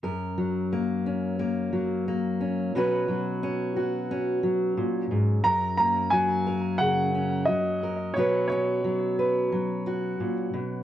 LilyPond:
<<
  \new Staff \with { instrumentName = "Upright piano" } { \time 4/4 \key fis \major \tempo 4 = 89 r1 | r1 | ais''8 ais''8 gis''4 fis''4 dis''4 | cis''8 cis''2 r4. | }
  \new Staff \with { instrumentName = "Steel-string acoustic guitar" } { \time 4/4 \key fis \major << { ais'4 ais8 cis'8 ais4 ais8 cis'8 | <fis cis' fis' b'>4 cis'8 fis'8 cis'2 | ais'8 ais4 ais'4 cis'4 ais'8 | <fis cis' fis' b'>8 cis'4 b'4 fis'4. | } \\ { fis,8 fis2 fis4. | b,8 fis2 fis8 ais,8 gis,8 | fis,4 fis4 cis4 fis4 | b,4 fis4 fis4 ais,8 b,8 | } >> }
>>